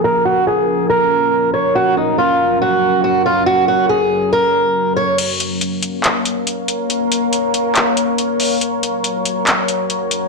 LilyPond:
<<
  \new Staff \with { instrumentName = "Steel-string acoustic guitar" } { \time 4/4 \key bes \minor \tempo 4 = 140 bes'8 ges'8 aes'4 bes'4. des''8 | ges'8 ees'8 f'4 ges'4 ges'8 f'8 | ges'8 ges'8 aes'4 bes'4. des''8 | r1 |
r1 | r1 | }
  \new Staff \with { instrumentName = "Ambient pad" } { \time 4/4 \key bes \minor << { <des' bes'>1~ | <des' bes'>1~ | <des' bes'>1 | <des'' f''>1~ |
<des'' f''>1 | bes'1 | } \\ { <bes, f>1 | <ges, ges>1~ | <ges, ges>1 | <bes bes'>1~ |
<bes bes'>1 | <ges ges'>1 | } >> }
  \new DrumStaff \with { instrumentName = "Drums" } \drummode { \time 4/4 r4 r4 r4 r4 | r4 r4 r4 r4 | r4 r4 r4 r4 | <cymc hh>8 hh8 hh8 hh8 <hc hh>8 hh8 hh8 hh8 |
hh8 hh8 hh8 hh8 <hc hh>8 hh8 hh8 hho8 | hh8 hh8 hh8 hh8 <hc hh>8 hh8 hh8 hh8 | }
>>